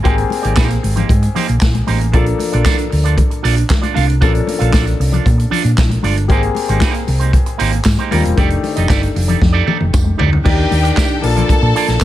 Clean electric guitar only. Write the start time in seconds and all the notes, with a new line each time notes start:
0.03 A#3 D#4 G4 C5
0.17 muted clean electric guitar stroke
0.29 muted clean electric guitar stroke
0.42 A#3 D#4 G4 D5
0.55 A#3 D#4 G4 C5
0.69 muted clean electric guitar stroke
0.83 muted clean electric guitar stroke
0.96 A#3 D#4 G4 C5
1.23 muted clean electric guitar stroke
1.35 A#3 D#4 G4 C5
1.48 muted clean electric guitar stroke
1.74 muted clean electric guitar stroke
1.87 A#3 D#4 G4 C5
2.00 muted clean electric guitar stroke
2.12 D4 F4 A4 D5
2.26 muted clean electric guitar stroke
2.38 muted clean electric guitar stroke
2.52 D4 F4 A4 D5
2.64 D4 F4 A4 D5
2.78 muted clean electric guitar stroke
2.90 muted clean electric guitar stroke
3.04 D4 F4 A4 D5
3.17 muted clean electric guitar stroke
3.30 muted clean electric guitar stroke
3.43 D4 F4 A4 D5
3.57 muted clean electric guitar stroke
3.69 muted clean electric guitar stroke
3.81 D4 F4 A4 D5
3.94 D4 F4 A4 F5
4.07 muted clean electric guitar stroke
4.21 D4 F4 A4 D5
4.34 muted clean electric guitar stroke
4.46 muted clean electric guitar stroke
4.59 D4 F4 A4 F5
4.72 D4 F4 A4 D5
4.86 muted clean electric guitar stroke
5.00 muted clean electric guitar stroke
5.12 D4 F4 A4 D5
5.38 muted clean electric guitar stroke
5.50 D4 F4 A4 D5
5.64 muted clean electric guitar stroke
5.90 muted clean electric guitar stroke
6.03 D4 F4 A4 D5
6.17 muted clean electric guitar stroke
6.30 A#3 D#4 G4 C5
6.43 muted clean electric guitar stroke
6.56 muted clean electric guitar stroke
6.69 A#3 D#4 G4 C5
6.82 A#3 D#4 G4 C5
6.95 muted clean electric guitar stroke
7.07 muted clean electric guitar stroke
7.19 A#3 D#4 G4 C5
7.32 muted clean electric guitar stroke
7.46 muted clean electric guitar stroke
7.58 A#3 D#4 G4 C5
7.72 muted clean electric guitar stroke
7.85 muted clean electric guitar stroke
7.99 A#3 D#4 G4 C5
8.11 A#3 D#4 G4 D5
8.24 muted clean electric guitar stroke
8.37 D#4 G4 A4 D5
8.50 muted clean electric guitar stroke
8.63 muted clean electric guitar stroke
8.76 D#4 G4 A4 D#5
8.89 D#4 G4 A4 D5
9.02 muted clean electric guitar stroke
9.15 muted clean electric guitar stroke
9.28 D#4 G4 A4 D5
9.41 muted clean electric guitar stroke
9.53 D#4 G4 A4 D5
9.66 D#4 G4 A4 D5
9.79 muted clean electric guitar stroke
10.04 muted clean electric guitar stroke
10.17 D#4 G4 A4 D5
10.31 muted clean electric guitar stroke
10.44 D4 G4 A#4 D5
10.57 muted clean electric guitar stroke
10.70 muted clean electric guitar stroke
10.83 D4 G4 A#4 D5
10.96 D4 G4 A#4 D5
11.09 muted clean electric guitar stroke
11.21 muted clean electric guitar stroke
11.36 A#3 F4 A4 D5
11.48 muted clean electric guitar stroke
11.62 muted clean electric guitar stroke
11.75 A#3 F4 A4 D5
11.88 muted clean electric guitar stroke
12.01 muted clean electric guitar stroke